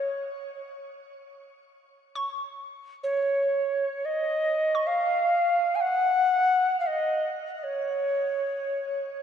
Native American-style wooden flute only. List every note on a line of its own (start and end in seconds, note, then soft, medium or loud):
0.00 0.58 C#5 medium
3.04 4.07 C#5 medium
4.05 4.88 D#5 medium
4.87 5.77 F5 medium
5.75 5.82 G#5 medium
5.81 6.80 F#5 loud
6.80 6.88 F5 medium
6.87 7.37 D#5 medium
7.56 7.65 D#5 soft
7.64 9.23 C#5 medium